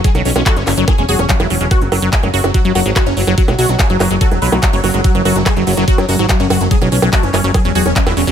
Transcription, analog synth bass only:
0.15 B1
0.25 B1
0.36 B1
0.56 F#1
0.67 F#1
0.77 F#1
0.98 E1
1.09 E1
1.19 E1
1.40 E1
1.50 E1
1.61 E1
1.81 F#1
1.92 F#1
2.02 F#1
2.23 F#1
2.34 F#1
2.44 F#1
2.65 F#2
2.75 F#1
2.86 G#1
3.06 F#1
3.17 F#1
3.27 F#1
3.48 B1
3.59 B1
3.69 B1
3.90 F#1
4.00 F#1
4.11 F#1
4.31 E1
4.42 B1
4.52 B1
4.73 F#1
4.84 F#1
4.94 F#1
5.15 F#1
5.25 F#1
5.36 F#1
5.57 F#1
5.67 F#1
5.77 F#1
5.98 F#2
6.09 F#1
6.19 G#1
6.40 F#1
6.50 F#1
6.61 F#1
6.82 B1
6.92 B1
7.02 B1
7.23 F#1
7.34 F#1
7.44 F#1
7.65 E1
7.75 E1
7.86 E1
8.06 E1
8.17 E1
8.27 E1

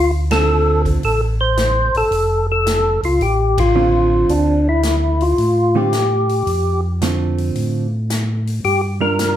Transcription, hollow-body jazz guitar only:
0.32 D3 A3 C4 F4
3.75 D3 A3 C4 F4
5.75 D3 A3 C4 F4
7.02 D3 A3 C4 F4
9.01 G3 D4 F4 A#4

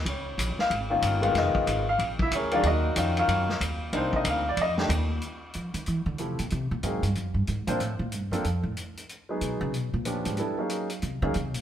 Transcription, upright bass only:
0.05 C#2
0.38 A#1
0.57 muted upright bass stroke
0.70 G#1
1.02 G1
1.34 F1
1.54 muted upright bass stroke
1.67 G#1
1.99 A#1
2.31 D2
2.63 D#2
2.96 F2
3.28 F#2
3.61 D#2
3.93 C2
4.24 D2
4.57 F2
4.89 D#2
5.55 F3
5.74 D#3
5.88 E3
6.06 D3
6.20 C3
6.39 A#2
6.52 C3
6.71 A#2
6.83 G#2
7.03 G2
7.16 F#2
7.34 G2
7.48 G#2
7.67 A#2
7.80 A2
7.99 A#2
8.13 G2
8.31 F#2
8.45 F2
8.63 A2
9.41 B2
9.61 C#3
9.74 B2
9.94 A#2
10.26 G#2
11.03 C3
11.22 C#3
11.35 C3
11.55 A#2

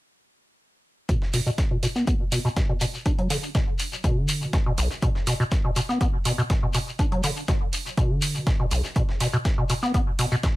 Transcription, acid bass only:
1.09 B2
1.34 B2
1.46 B2
1.71 B2
1.83 B2
1.96 B3
2.07 B3
2.32 B2
2.45 B2
2.57 B2
2.69 B2
2.81 B2
3.06 D4
3.19 F#3
3.30 D3
3.55 B2
4.04 B2
4.17 D3
4.42 C#3
4.53 B2
4.66 B2
4.78 B1
5.02 B2
5.27 B2
5.40 B2
5.65 B2
5.76 B2
5.89 B3
6.01 B3
6.25 B2
6.38 B2
6.50 B2
6.63 B2
6.75 B2
6.99 D4
7.12 F#3
7.24 D3
7.48 B2
7.98 B2
8.10 D3
8.35 C#3
8.47 B2
8.60 B2
8.71 B1
8.96 B2
9.20 B2
9.33 B2
9.58 B2
9.70 B2
9.83 B3
9.94 B3
10.19 B2
10.32 B2
10.44 B2

